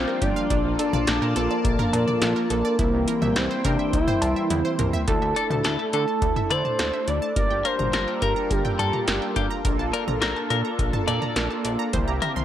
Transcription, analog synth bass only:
0.22 G1
0.50 A#1
0.64 A#1
0.93 A#1
1.07 A#1
1.22 A#2
1.36 A#1
1.65 A#1
1.93 A#2
2.22 A#1
2.50 A#1
2.79 C2
2.93 C2
3.22 C2
3.36 C2
3.65 C3
3.93 C2
4.22 C2
4.50 E2
4.79 C2
5.08 D2
5.22 D2
5.50 D2
5.65 D2
5.93 D3
6.22 D2
6.50 D3
6.79 D2
7.08 D2
7.36 G1
7.51 G1
7.79 G1
7.94 G1
8.22 G2
8.50 G1
8.79 G2
9.07 G1
9.36 G2
9.65 A#1
9.79 A#1
10.08 A#1
10.22 A#1
10.50 A#2
10.79 A#1
11.08 A#2
11.36 A#1
11.65 A#1
11.93 C2
12.08 C2
12.36 C2

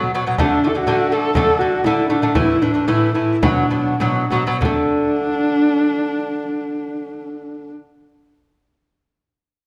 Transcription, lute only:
Already playing: F#3
0.14 B2 F#3
0.27 B2 F#3
0.39 D3 A3
0.64 D3 A3
0.75 D3 A3
0.87 D3 A3
1.12 D3 A3
1.36 D3 A3
1.61 D3 A3
1.86 D3 A3
2.10 D3 A3
2.22 D3 A3
2.35 A2 E3
2.62 A2 E3
2.74 A2 E3
2.88 A2 E3
3.14 A2 E3
3.42 B2 F#3
3.71 B2 F#3
4.00 B2 F#3
4.31 B2 F#3
4.47 B2 F#3
4.61 D3
4.65 A3

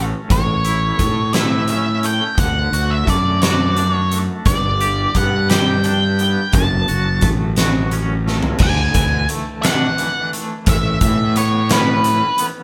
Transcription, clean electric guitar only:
Already playing: A3 C#4 F#4
0.29 A2
0.65 E4
0.99 A3
1.34 E4
1.70 C#4
2.04 A3
2.38 D3
2.73 F#4
3.08 A3
3.43 F#4
3.78 D4
4.12 A3
4.46 G2
4.81 G4
5.16 B3
5.50 G4
5.86 D4
6.21 B3
6.55 F#2
6.88 F#4
7.24 A3
7.58 F#4
7.93 C#4
8.27 A3
8.61 D3
8.95 E3
9.30 A3
9.64 D4
9.99 E3
10.33 A3
10.68 A2
11.02 E3
11.37 B3
11.71 C#4
12.05 E3
12.39 B3

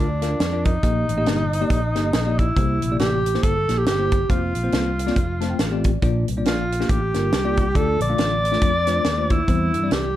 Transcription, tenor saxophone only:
Already playing: D4
0.65 D#4
2.39 E4
2.99 G4
3.43 A4
3.78 G4
3.87 G4
4.30 F4
6.46 F4
6.89 G4
7.76 A4
8.02 D5
9.31 E4
9.93 G4

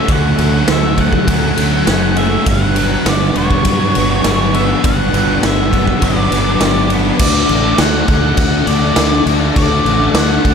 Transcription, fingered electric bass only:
0.09 D2
0.39 D2
0.68 D2
1.28 D2
1.58 D2
1.87 F#1
2.47 G1
3.06 G1
3.36 E1
3.65 G2
3.96 G1
4.25 G1
4.84 G1
5.13 G1
5.43 G1
6.02 G1
6.31 G1
6.60 G1
7.20 D2
7.50 A1
7.79 D2
8.09 D2
8.37 D2
8.67 D2
8.97 D2
9.26 D2
9.56 D2
9.85 A1
10.14 D2
10.45 D2

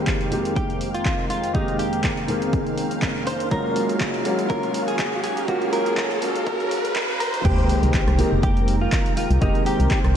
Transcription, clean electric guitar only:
0.56 G4
0.95 F4
1.30 F4
1.55 D#4
1.79 G4
3.27 C5
3.51 A#4
4.50 A#4
4.88 G#4
5.24 G#4
5.48 F#4
5.73 A#4
7.20 A#4
7.45 G4
8.43 G4
8.81 F4
9.17 F4
9.42 D#4
9.66 G4

